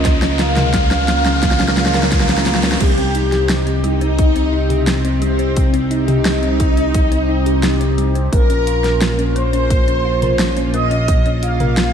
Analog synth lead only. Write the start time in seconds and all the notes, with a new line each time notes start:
Already playing: D#5
0.39 F5
2.81 G4
3.84 D#4
5.22 C4
5.91 D#4
8.33 A#4
9.36 C5
10.74 D#5
11.43 F5